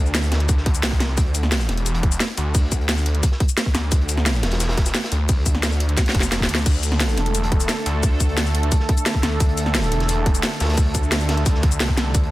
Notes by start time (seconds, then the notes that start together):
Already playing: D2
0.06 shaker
0.14 snare, closed hi-hat, shaker
0.23 snare, shaker
0.31 snare, closed hi-hat
0.40 closed hi-hat
0.48 D2, kick, closed hi-hat, shaker
0.58 snare
0.66 kick, closed hi-hat
0.75 closed hi-hat, shaker
0.83 C2, snare, closed hi-hat, shaker
0.92 kick
1.00 snare, closed hi-hat, shaker
1.17 D2, kick, closed hi-hat, shaker
1.26 closed hi-hat
1.34 closed hi-hat, shaker
1.43 snare
1.52 snare, closed hi-hat, shaker
1.60 snare, shaker
1.69 E1, snare, closed hi-hat
1.77 closed hi-hat
1.86 closed hi-hat, shaker
1.95 closed hi-hat
2.03 kick, closed hi-hat
2.12 closed hi-hat, shaker
2.20 snare, closed hi-hat, shaker
2.37 D2, closed hi-hat, shaker
2.55 kick, closed hi-hat, open hi-hat, shaker
2.72 kick, closed hi-hat, shaker
2.81 closed hi-hat
2.89 snare, closed hi-hat, shaker
2.97 shaker
3.06 closed hi-hat
3.15 closed hi-hat
3.23 kick, closed hi-hat, shaker
3.32 snare
3.40 kick, closed hi-hat
3.49 closed hi-hat, shaker
3.58 snare, closed hi-hat, shaker
3.66 kick
3.74 D2, snare, closed hi-hat, shaker
3.91 D2, kick, closed hi-hat, shaker
4.01 closed hi-hat
4.09 closed hi-hat, shaker
4.17 snare
4.26 snare, closed hi-hat, shaker
4.35 snare, shaker
4.43 E1, snare, closed hi-hat
4.51 snare, closed hi-hat
4.60 snare, closed hi-hat, shaker
4.69 snare, closed hi-hat
4.77 kick, snare, closed hi-hat
4.86 snare, closed hi-hat, shaker
4.95 snare, closed hi-hat, shaker
5.03 snare, closed hi-hat
5.12 D2, closed hi-hat, shaker
5.29 kick, closed hi-hat, open hi-hat, shaker
5.46 kick, closed hi-hat, shaker
5.55 snare
5.63 snare, closed hi-hat, shaker
5.72 snare, shaker
5.80 closed hi-hat
5.89 closed hi-hat
5.97 kick, snare, closed hi-hat, shaker
6.06 snare, closed hi-hat
6.09 snare
6.14 F1, kick, closed hi-hat
6.20 snare, closed hi-hat, shaker
6.31 snare, closed hi-hat, shaker
6.40 kick, snare
6.49 D2, closed hi-hat, shaker
6.55 snare, shaker
6.66 D2 D3 A3 A4, kick, closed hi-hat, crash, shaker
6.75 closed hi-hat
6.83 closed hi-hat, shaker
6.92 snare
7.00 snare, closed hi-hat, shaker
7.08 snare, shaker
7.16 E1, snare, closed hi-hat
7.26 closed hi-hat
7.35 closed hi-hat, shaker
7.44 closed hi-hat
7.52 kick, closed hi-hat
7.60 closed hi-hat, shaker
7.68 snare, closed hi-hat, shaker
7.86 D2, closed hi-hat, shaker
8.03 kick, closed hi-hat, open hi-hat, shaker
8.20 kick, closed hi-hat, shaker
8.29 closed hi-hat
8.37 snare, closed hi-hat, shaker
8.46 shaker
8.55 closed hi-hat
8.63 closed hi-hat
8.72 kick, closed hi-hat, shaker
8.80 snare
8.89 kick, closed hi-hat
8.97 closed hi-hat, shaker
9.06 snare, closed hi-hat, shaker
9.15 kick
9.23 D2, snare, closed hi-hat, shaker
9.40 D2, kick, closed hi-hat, shaker
9.49 closed hi-hat
9.58 closed hi-hat, shaker
9.66 snare
9.75 snare, closed hi-hat, shaker
9.83 snare, shaker
9.91 E1, closed hi-hat
10.00 snare, closed hi-hat
10.09 closed hi-hat, shaker
10.26 kick, closed hi-hat
10.34 closed hi-hat, shaker
10.43 snare, closed hi-hat, shaker
10.60 D2, snare, closed hi-hat, shaker
10.65 snare, closed hi-hat
10.69 snare, closed hi-hat
10.73 snare, closed hi-hat, open hi-hat
10.77 kick, closed hi-hat, shaker
10.95 kick, closed hi-hat, shaker
11.03 shaker
11.12 snare, closed hi-hat, shaker
11.20 snare, shaker
11.29 snare, closed hi-hat
11.37 closed hi-hat
11.46 D2, kick, closed hi-hat, shaker
11.55 snare
11.63 kick, closed hi-hat
11.72 closed hi-hat, shaker
11.80 C2, snare, closed hi-hat, shaker
11.89 kick
11.97 snare, closed hi-hat, shaker
12.14 D2 G3 C5, kick, closed hi-hat, shaker
12.23 closed hi-hat